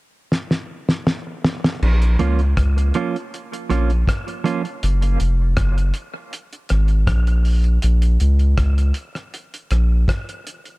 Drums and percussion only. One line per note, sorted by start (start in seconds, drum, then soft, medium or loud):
0.32 snare medium
0.51 snare medium
0.89 snare medium
1.07 snare medium
1.45 snare loud
1.64 snare medium
1.82 crash medium
2.02 closed hi-hat medium
2.19 closed hi-hat medium
2.39 closed hi-hat soft
2.57 kick loud
2.57 cross-stick loud
2.57 closed hi-hat medium
2.78 closed hi-hat medium
2.94 closed hi-hat medium
3.16 closed hi-hat soft
3.34 closed hi-hat medium
3.53 closed hi-hat medium
3.70 cross-stick medium
3.70 closed hi-hat medium
3.90 closed hi-hat soft
4.08 kick loud
4.08 cross-stick loud
4.08 closed hi-hat medium
4.28 closed hi-hat soft
4.46 closed hi-hat medium
4.65 closed hi-hat soft
4.83 closed hi-hat medium
5.02 closed hi-hat medium
5.20 closed hi-hat medium
5.57 kick loud
5.57 cross-stick loud
5.57 closed hi-hat loud
5.78 closed hi-hat soft
5.94 closed hi-hat medium
6.33 closed hi-hat medium
6.53 closed hi-hat medium
6.69 cross-stick medium
6.69 closed hi-hat medium
6.88 closed hi-hat soft
7.07 kick loud
7.07 cross-stick loud
7.07 closed hi-hat medium
7.27 closed hi-hat soft
7.45 open hi-hat soft
7.64 closed hi-hat soft
7.82 closed hi-hat medium
8.02 closed hi-hat medium
8.20 closed hi-hat medium
8.39 closed hi-hat soft
8.58 kick loud
8.58 cross-stick loud
8.58 closed hi-hat medium
8.78 closed hi-hat medium
8.94 closed hi-hat medium
9.15 cross-stick medium
9.15 closed hi-hat soft
9.34 closed hi-hat medium
9.54 closed hi-hat medium
9.71 cross-stick medium
9.71 closed hi-hat medium
10.08 kick loud
10.08 cross-stick loud
10.08 closed hi-hat medium
10.29 closed hi-hat soft
10.47 closed hi-hat medium
10.65 closed hi-hat soft